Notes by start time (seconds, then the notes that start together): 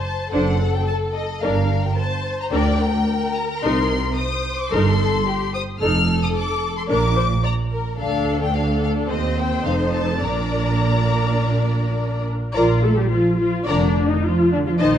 Already playing: C5
0.04 A5
0.32 F#1 F#2 D4 A4 C5 F#5
0.74 G5
0.87 A5
1.14 D#5
1.42 G1 G2 D4 A#4 F5
1.84 G5
1.96 C5 A5
2.41 A#5
2.53 D2 D4 A#4 D5 G5
2.82 A#4
3.36 A#5
3.50 A#5
3.63 C2 C3 D#4 A#4 C6
4.17 C5 D#6
4.60 D6
4.73 G1 G2 D#4 A4 A#4 C6
5.27 G4
5.54 C5 D#6
5.80 F1 F2 D#4 A4 F6
6.23 D#6
6.37 D6
6.77 C6
6.89 A#1 A#2 D4 A#4 D6
7.17 C5
7.44 D5 A#5
7.72 A#4
7.99 D2 D4 A4 F5
8.43 G5
8.54 D4 A4 F5
8.83 F5
9.09 D#2 C4 C5 D#5
9.39 G5
9.65 F1 F2 D#4 A4 F5
9.95 A5
10.22 A#1 A#2 D4 A#4 D5 A#5
12.55 A#1 F3 F4 A#4 D5 A#5
12.83 A3 A4
12.97 G3 G4
13.10 F3 F4
13.39 F3 F4
13.67 F1 D3 D4 A#4 D5 A#5
14.10 D#3 D#4
14.24 F3 F4
14.52 D3 D4
14.66 F3 F4
14.79 A#1 D#3 D#4 C5 D#5 A5